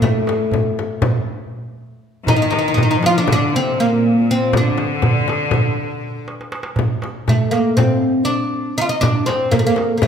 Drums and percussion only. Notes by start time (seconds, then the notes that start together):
0.02 darbuka dum, frame drum
0.27 darbuka tek, frame drum
0.52 darbuka dum, frame drum
0.79 frame drum
1.02 darbuka dum, frame drum
2.27 darbuka dum, frame drum
2.52 darbuka tek, frame drum
2.77 darbuka dum, frame drum
3.03 darbuka tek, frame drum
3.27 frame drum, darbuka dum
4.53 darbuka dum, frame drum
4.78 darbuka tek, frame drum
5.02 frame drum, darbuka dum
5.28 darbuka tek, frame drum
5.51 frame drum, darbuka dum
6.28 darbuka tek
6.41 darbuka ka
6.52 darbuka tek
6.63 darbuka ka
6.76 darbuka dum, frame drum
7.02 darbuka tek, frame drum
7.28 frame drum, darbuka dum
7.53 darbuka tek
7.77 darbuka dum, frame drum
8.79 darbuka ka
9.03 frame drum, darbuka dum
9.28 darbuka tek, frame drum
9.52 frame drum, darbuka dum
9.76 darbuka tek, frame drum
10.02 frame drum, darbuka dum